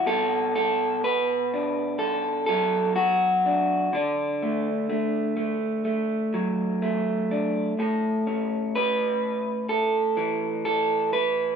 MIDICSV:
0, 0, Header, 1, 2, 480
1, 0, Start_track
1, 0, Key_signature, 2, "minor"
1, 0, Tempo, 969305
1, 28, Time_signature, 4, 2, 24, 8
1, 1948, Tempo, 958466
1, 5766, End_track
2, 0, Start_track
2, 0, Title_t, "Clean electric guitar"
2, 0, Program_c, 0, 27
2, 31, Note_on_c, 0, 47, 72
2, 34, Note_on_c, 0, 69, 103
2, 269, Note_off_c, 0, 69, 0
2, 275, Note_on_c, 0, 69, 99
2, 514, Note_off_c, 0, 69, 0
2, 516, Note_on_c, 0, 71, 103
2, 761, Note_on_c, 0, 62, 43
2, 982, Note_off_c, 0, 71, 0
2, 984, Note_on_c, 0, 69, 96
2, 1214, Note_off_c, 0, 69, 0
2, 1220, Note_on_c, 0, 69, 97
2, 1233, Note_on_c, 0, 54, 63
2, 1462, Note_off_c, 0, 69, 0
2, 1464, Note_on_c, 0, 66, 92
2, 1707, Note_off_c, 0, 62, 0
2, 1713, Note_on_c, 0, 62, 47
2, 1921, Note_off_c, 0, 54, 0
2, 1922, Note_off_c, 0, 62, 0
2, 1944, Note_off_c, 0, 47, 0
2, 1946, Note_off_c, 0, 66, 0
2, 1946, Note_on_c, 0, 50, 67
2, 1954, Note_on_c, 0, 62, 83
2, 2194, Note_on_c, 0, 57, 46
2, 2427, Note_off_c, 0, 57, 0
2, 2429, Note_on_c, 0, 57, 49
2, 2664, Note_off_c, 0, 57, 0
2, 2666, Note_on_c, 0, 57, 45
2, 2905, Note_off_c, 0, 57, 0
2, 2907, Note_on_c, 0, 57, 49
2, 3152, Note_on_c, 0, 54, 62
2, 3393, Note_off_c, 0, 57, 0
2, 3395, Note_on_c, 0, 57, 53
2, 3396, Note_off_c, 0, 62, 0
2, 3640, Note_on_c, 0, 62, 44
2, 3842, Note_off_c, 0, 50, 0
2, 3843, Note_off_c, 0, 54, 0
2, 3847, Note_off_c, 0, 62, 0
2, 3878, Note_on_c, 0, 45, 76
2, 3882, Note_on_c, 0, 69, 50
2, 4117, Note_off_c, 0, 57, 0
2, 4119, Note_on_c, 0, 61, 44
2, 4360, Note_off_c, 0, 69, 0
2, 4362, Note_on_c, 0, 71, 110
2, 4830, Note_off_c, 0, 71, 0
2, 4832, Note_on_c, 0, 69, 91
2, 5071, Note_on_c, 0, 52, 64
2, 5306, Note_off_c, 0, 69, 0
2, 5312, Note_on_c, 0, 69, 98
2, 5550, Note_off_c, 0, 69, 0
2, 5552, Note_on_c, 0, 71, 97
2, 5762, Note_off_c, 0, 45, 0
2, 5763, Note_off_c, 0, 61, 0
2, 5766, Note_off_c, 0, 52, 0
2, 5766, Note_off_c, 0, 71, 0
2, 5766, End_track
0, 0, End_of_file